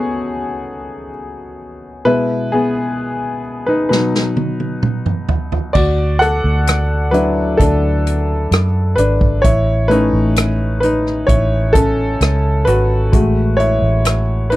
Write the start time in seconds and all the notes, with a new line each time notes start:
Already playing: C#3 A3 B3 C#4 D#4 F#4 G#4 A4 B4 C#5
2.05 B2 G#3 B3 E4 B4
2.52 B3 G#4
3.66 D#4 B4
3.89 B2 F#3 D#4 B4, snare
4.15 snare
4.37 high tom
4.60 high tom
4.83 mid tom
5.06 mid tom
5.29 floor tom
5.52 floor tom
5.73 D2 F#4 D5, kick, crash
6.19 A4 F#5, closed hi-hat
6.44 D2
6.67 cross-stick, closed hi-hat
7.11 F#3 D4 E4 B4, closed hi-hat
7.58 D2 D4 A4, kick, closed hi-hat
8.07 closed hi-hat
8.51 F#2, cross-stick, closed hi-hat
8.96 G#1 D4 B4, closed hi-hat
9.21 kick
9.42 A1 E4 C#5, kick, closed hi-hat
9.88 A3 C#4 D#4 E4 B4, closed hi-hat
10.13 A1
10.36 cross-stick, closed hi-hat
10.80 D#4 B4, closed hi-hat
11.07 cross-stick
11.27 A1 E4 C#5, kick, closed hi-hat
11.73 C#4 A4, kick, closed hi-hat
12.21 C#2, cross-stick, closed hi-hat
12.65 G#1 F#4 B4, closed hi-hat
13.12 A1 G#3 A3 F#4, kick, closed hi-hat
13.57 E4 C#5, closed hi-hat
13.82 A1
14.05 cross-stick, closed hi-hat
14.50 D#4 B4, closed hi-hat